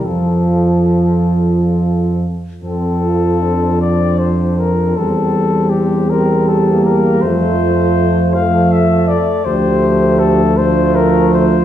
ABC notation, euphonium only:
X:1
M:6/8
L:1/8
Q:3/8=53
K:F
V:1 name="Euphonium" clef=bass
F,4- F, z | F,6 | G,3 G,3 | F,3 F,2 z |
F,3 F,3 |]